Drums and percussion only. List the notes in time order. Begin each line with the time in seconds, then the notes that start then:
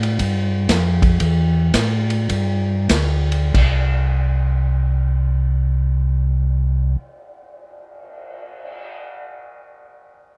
0.03 ride
0.19 kick, ride
0.69 kick, snare, hi-hat pedal, ride
1.02 kick, ride
1.20 kick, ride
1.74 kick, snare, hi-hat pedal, ride
2.10 ride
2.29 kick, ride
2.89 kick, snare, hi-hat pedal, ride
3.32 ride
3.54 kick, crash
3.99 cymbal swell